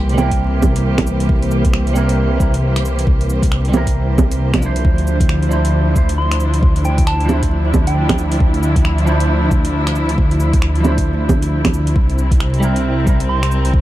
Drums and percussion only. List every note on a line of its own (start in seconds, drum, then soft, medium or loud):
0.09 closed hi-hat soft
0.18 low bongo medium
0.18 cabasa medium
0.31 kick medium
0.31 closed hi-hat medium
0.62 kick loud
0.62 low bongo medium
0.62 cabasa medium
0.76 closed hi-hat medium
0.98 finger snap loud
0.98 kick medium
0.98 closed hi-hat soft
0.98 low bongo medium
1.07 cabasa medium
1.20 closed hi-hat medium
1.29 kick loud
1.42 closed hi-hat soft
1.51 cabasa medium
1.65 kick loud
1.65 closed hi-hat medium
1.73 finger snap loud
1.87 closed hi-hat soft
1.96 cabasa medium
2.09 closed hi-hat medium
2.40 kick loud
2.40 cabasa medium
2.54 closed hi-hat medium
2.76 finger snap loud
2.76 closed hi-hat soft
2.85 cabasa medium
2.99 closed hi-hat medium
3.07 kick loud
3.21 closed hi-hat soft
3.30 cabasa medium
3.43 kick loud
3.43 closed hi-hat medium
3.52 finger snap loud
3.65 closed hi-hat soft
3.74 low bongo medium
3.74 cabasa medium
3.87 kick medium
3.87 closed hi-hat medium
4.18 kick loud
4.18 low bongo medium
4.18 cabasa medium
4.32 closed hi-hat medium
4.32 cabasa soft
4.54 finger snap loud
4.54 kick medium
4.54 closed hi-hat soft
4.54 low bongo medium
4.62 cabasa medium
4.76 closed hi-hat medium
4.85 kick loud
4.98 closed hi-hat soft
5.07 cabasa medium
5.20 kick loud
5.20 closed hi-hat medium
5.29 finger snap loud
5.43 closed hi-hat soft
5.51 cabasa medium
5.65 closed hi-hat medium
5.96 kick loud
5.96 cabasa medium
6.09 closed hi-hat medium
6.31 finger snap loud
6.31 closed hi-hat soft
6.40 cabasa medium
6.54 closed hi-hat medium
6.63 kick loud
6.76 closed hi-hat soft
6.85 cabasa medium
6.98 kick loud
6.98 closed hi-hat medium
7.07 finger snap loud
7.20 closed hi-hat soft
7.29 low bongo medium
7.29 cabasa medium
7.43 kick medium
7.43 closed hi-hat medium
7.74 kick loud
7.74 low bongo medium
7.74 cabasa medium
7.87 closed hi-hat medium
8.09 finger snap loud
8.09 kick medium
8.09 closed hi-hat soft
8.09 low bongo medium
8.18 cabasa medium
8.32 closed hi-hat medium
8.40 kick loud
8.54 closed hi-hat soft
8.63 cabasa medium
8.76 kick loud
8.76 closed hi-hat medium
8.85 finger snap loud
8.98 closed hi-hat soft
9.07 cabasa medium
9.20 closed hi-hat medium
9.51 kick loud
9.51 cabasa medium
9.65 closed hi-hat medium
9.87 finger snap loud
9.87 closed hi-hat soft
9.96 cabasa medium
10.09 closed hi-hat medium
10.18 kick loud
10.31 closed hi-hat soft
10.40 cabasa medium
10.53 kick loud
10.53 closed hi-hat medium
10.62 finger snap loud
10.75 closed hi-hat soft
10.85 low bongo medium
10.85 cabasa medium
10.98 kick medium
10.98 closed hi-hat medium
11.29 kick loud
11.29 low bongo medium
11.29 cabasa medium
11.42 closed hi-hat medium
11.42 cabasa soft
11.65 finger snap loud
11.65 kick medium
11.65 closed hi-hat soft
11.65 low bongo medium
11.74 cabasa medium
11.87 closed hi-hat medium
11.96 kick loud
12.10 closed hi-hat soft
12.18 cabasa medium
12.31 kick loud
12.31 closed hi-hat medium
12.40 finger snap loud
12.54 closed hi-hat soft
12.63 cabasa medium
12.76 closed hi-hat medium
13.07 kick loud
13.07 cabasa medium
13.20 closed hi-hat medium
13.43 finger snap loud
13.43 closed hi-hat soft
13.52 cabasa medium
13.65 closed hi-hat medium
13.74 kick loud